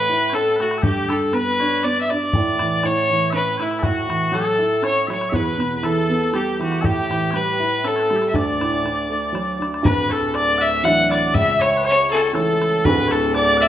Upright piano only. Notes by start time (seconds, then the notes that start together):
Already playing: A2
0.09 E4
0.33 C#4
0.59 A3
0.83 G2
1.09 D3
1.33 B3
1.60 D4
1.84 B3
2.11 D4
2.35 A2
2.60 E3
2.84 A2
3.10 E3
3.33 C#4
3.59 A2
3.82 A2
4.08 E3
4.32 F#3
4.58 E4
4.82 C#4
5.08 F#3
5.32 E2
5.58 B2
5.82 E3
6.09 B3
6.33 G3
6.59 E3
6.82 A2
7.10 E3
7.33 G3
7.60 E4
7.84 C#4
8.11 G3
8.34 D2
8.61 A2
8.84 D3
9.10 A3
9.33 F#3
9.59 D3
9.83 D1 D2
10.83 E3 F#3 D4
11.34 C#2
12.33 E3 A3 C#4
12.85 D1 D2